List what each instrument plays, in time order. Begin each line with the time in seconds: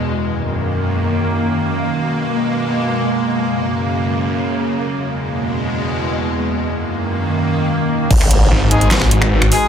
0.05 ambient pad F#2 D#3 A#3
1.66 ambient pad B2 G#3
3.27 ambient pad F#2 C#3
4.89 ambient pad E2 B2 G#3
6.50 ambient pad F#2 D#3 A#3
8.11 wobble bass G#1, ambient pad G#3 F#4 B4, kick, crash, impact
8.21 finger snap
8.31 closed hi-hat
8.51 detuned saw bass G#1
8.71 brass ensemble G#3 D#4 G#4, closed hi-hat
8.81 closed hi-hat
8.91 snare, clap
9.01 finger snap
9.11 closed hi-hat
9.22 finger snap
9.31 detuned saw bass G#1
9.42 finger snap
9.52 brass ensemble G#3 D#4 G#4, open hi-hat